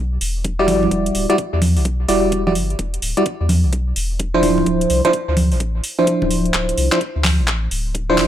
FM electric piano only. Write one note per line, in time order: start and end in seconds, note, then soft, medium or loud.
0.59 1.26 G3 loud
0.59 1.26 E4 medium
0.59 1.26 F#4 medium
0.59 1.26 D5 loud
1.30 1.36 G3 medium
1.30 1.36 E4 medium
1.30 1.36 F#4 medium
1.30 1.36 D5 loud
2.09 2.43 G3 medium
2.09 2.43 E4 medium
2.09 2.43 F#4 medium
2.09 2.43 D5 loud
2.47 2.53 G3 medium
2.47 2.53 E4 medium
2.47 2.53 F#4 medium
2.47 2.53 D5 medium
3.17 3.23 G3 medium
3.17 3.23 E4 medium
3.17 3.23 F#4 medium
3.17 3.23 D5 medium
4.34 5.01 F3 loud
4.34 5.01 D4 medium
4.34 5.01 E4 medium
4.34 5.01 C5 loud
5.05 5.11 F3 medium
5.05 5.11 D4 medium
5.05 5.11 E4 medium
5.05 5.11 C5 loud
5.99 6.89 F3 medium
5.99 6.89 D4 medium
5.99 6.89 E4 medium
5.99 6.89 C5 medium
6.92 6.98 F3 medium
6.92 6.98 D4 medium
6.92 6.98 E4 medium
6.92 6.98 C5 medium
8.10 8.27 F3 medium
8.10 8.27 D4 medium
8.10 8.27 E4 medium
8.10 8.27 C5 loud